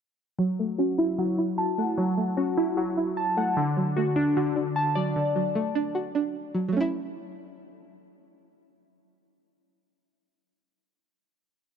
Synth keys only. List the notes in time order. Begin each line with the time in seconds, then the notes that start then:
0.39 F#3
0.78 F#4
0.99 E4
1.18 F#3
1.58 A5
1.78 F#5
1.98 F#3
2.37 F#4
2.57 E4
2.77 F#3
3.17 A5
3.37 F#5
3.57 D3
3.97 F#4
4.16 D4
4.37 D3
4.76 A5
4.95 D5